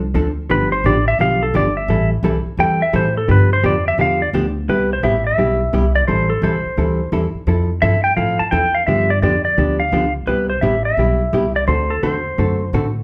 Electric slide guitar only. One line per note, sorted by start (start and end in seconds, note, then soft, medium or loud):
0.51 0.72 B4 medium
0.72 0.84 C5 medium
0.86 1.07 D5 medium
1.08 1.19 E5 loud
1.21 1.42 F5 loud
1.43 1.54 A4 medium
1.56 1.77 D5 medium
1.77 2.09 E5 medium
2.60 2.81 G5 loud
2.82 2.94 E5 loud
2.96 3.17 C5 medium
3.17 3.29 A4 medium
3.31 3.52 B4 medium
3.53 3.64 C5 medium
3.66 3.87 D5 medium
3.88 3.99 E5 medium
4.01 4.22 F5 loud
4.22 4.29 D5 loud
4.70 4.90 B4 loud
4.93 5.04 C5 medium
5.04 5.24 E5 loud
5.27 5.95 E5 loud
5.95 6.07 D5 medium
6.08 6.29 C5 loud
6.30 6.42 A4 medium
6.43 7.09 C5 medium
7.82 8.03 E5 loud
8.04 8.16 G5 loud
8.17 8.40 F5 loud
8.39 8.51 A5 loud
8.51 8.75 G5 loud
8.75 8.86 F5 medium
8.87 9.10 E5 loud
9.10 9.21 D5 medium
9.22 9.44 D5 medium
9.45 9.81 D5 medium
9.80 10.12 F5 loud
10.27 10.49 B4 medium
10.50 10.63 C5 medium
10.61 10.84 E5 medium
10.85 11.51 E5 medium
11.56 11.67 D5 medium
11.68 11.91 C5 medium
11.90 12.03 A4 medium
12.03 12.69 C5 medium